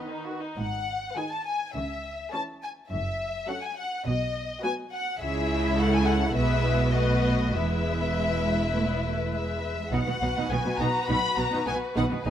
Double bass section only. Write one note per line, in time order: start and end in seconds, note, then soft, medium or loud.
0.57 1.03 G#1 soft
1.74 2.21 C#2 soft
2.91 3.37 F#1 medium
4.06 4.52 B1 soft
5.20 6.31 C#2 medium
6.36 7.50 B1 soft
7.53 9.72 E1 soft
9.91 9.97 B1 medium
10.21 10.27 B1 soft
10.50 10.56 B1 soft
10.79 10.85 B1 medium
11.09 11.15 B1 medium
11.37 11.43 B1 soft
11.67 11.73 B1 soft
11.96 12.02 B1 medium
12.25 12.30 G#1 medium